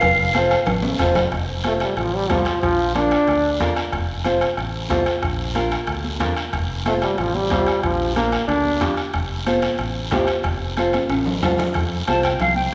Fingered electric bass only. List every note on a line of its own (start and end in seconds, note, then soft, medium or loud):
0.02 0.54 F1 loud
0.67 0.93 A1 medium
1.00 1.26 F1 medium
1.32 1.84 F1 medium
1.97 2.31 A1 medium
2.31 2.43 C2 medium
2.63 3.15 A#1 medium
3.28 3.60 D2 medium
3.60 3.73 F2 medium
3.93 4.45 F1 medium
4.58 4.90 A1 medium
4.90 5.03 C2 medium
5.23 5.75 A#1 medium
5.88 6.20 D2 medium
6.20 6.34 F2 medium
6.53 7.06 F1 medium
7.19 7.51 A1 medium
7.51 7.64 C2 medium
7.84 8.36 A#1 medium
8.48 8.81 D2 medium
8.81 8.95 F2 medium
9.14 9.66 F1 medium
9.79 10.12 A1 medium
10.12 10.25 C2 medium
10.44 10.97 F1 medium
11.10 11.42 A1 medium
11.42 11.56 C2 medium
11.75 12.01 F2 loud
12.08 12.34 C2 medium
12.41 12.67 C2 loud